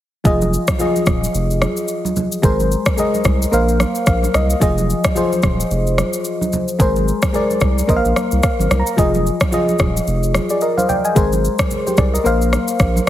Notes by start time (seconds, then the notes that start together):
0.24 F1 F3 F4 G#4 D#5, kick, low conga, shaker
0.41 high conga, shaker
0.53 shaker
0.67 kick, cross-stick, high conga, shaker
0.79 F3 F4 G#4 D#5, low conga, shaker
0.96 high conga, shaker
1.06 D#1, kick, cross-stick, high conga, low conga, shaker
1.24 shaker
1.34 F1, shaker
1.50 shaker
1.62 cross-stick, high conga, shaker
1.77 shaker
1.88 shaker
2.05 high conga, shaker
2.16 high conga, low conga, shaker
2.32 shaker
2.42 G#1 G#3 G#4 A#4 C5, kick, low conga, shaker
2.60 high conga, shaker
2.72 shaker
2.86 kick, cross-stick, high conga, shaker
2.97 G#3 G#4 A#4 D#5, low conga, shaker
3.14 high conga, shaker
3.24 C2, kick, cross-stick, high conga, low conga, shaker
3.42 shaker
3.51 A#1 A#3 A#4 C5 F5, shaker
3.69 shaker
3.80 cross-stick, high conga, shaker
3.95 shaker
4.06 A#1 F5, kick, cross-stick, shaker
4.23 high conga, shaker
4.34 C2 D#5, cross-stick, high conga, low conga, shaker
4.50 shaker
4.60 F1 F3 F4 G#4 D#5, kick, low conga, shaker
4.78 high conga, shaker
4.90 shaker
5.04 kick, cross-stick, high conga, shaker
5.15 F3 F4 G#4 C5, low conga, shaker
5.32 high conga, shaker
5.42 D#1, kick, cross-stick, high conga, low conga, shaker
5.60 shaker
5.71 F1, shaker
5.87 shaker
5.98 cross-stick, high conga, shaker
6.13 shaker
6.25 shaker
6.41 high conga, shaker
6.53 high conga, low conga, shaker
6.68 shaker
6.79 G#1 G#3 G#4 A#4 C5, kick, low conga, shaker
6.96 high conga, shaker
7.08 shaker
7.22 kick, cross-stick, high conga, shaker
7.33 G#3 G#4 A#4 D5, low conga, shaker
7.50 high conga, shaker
7.60 C2, kick, cross-stick, high conga, low conga, shaker
7.78 shaker
7.87 A#1 A#3 A#4 C5 D#5, kick, shaker
7.96 F5
8.05 A#1, shaker
8.16 cross-stick, high conga, shaker
8.31 C2, shaker
8.43 F5, kick, cross-stick, shaker
8.59 G#1, high conga, shaker
8.71 C2, cross-stick, high conga, low conga, shaker
8.80 A#5
8.87 shaker
8.97 F1 F3 F4 G#4 D#5, kick, low conga, shaker
9.14 high conga, shaker
9.27 shaker
9.40 kick, cross-stick, high conga, shaker
9.51 F3 F4 G#4 D#5, low conga, shaker
9.69 high conga, shaker
9.79 D#1, kick, cross-stick, high conga, low conga, shaker
9.97 shaker
10.07 F1, shaker
10.23 shaker
10.34 cross-stick, high conga, shaker
10.50 G#4 D5, shaker
10.61 A#4 D#5, shaker
10.77 C5 F5, high conga, shaker
10.89 D5 G5, high conga, low conga, shaker
11.05 D#5 G#5, shaker
11.15 G#1 G#3 G#4 A#4 C5, kick, low conga, shaker
11.32 high conga, shaker
11.45 shaker
11.59 kick, cross-stick, high conga, shaker
11.71 low conga, shaker
11.87 G4 C5, high conga, shaker
11.97 C2 G#4 D5, kick, cross-stick, high conga, low conga, shaker
12.14 A#4 D#5, shaker
12.24 A#1 A#3 A#4 C5 F5, shaker
12.41 shaker
12.53 cross-stick, high conga, shaker
12.68 shaker
12.79 A#1, kick, cross-stick, shaker
12.96 high conga, shaker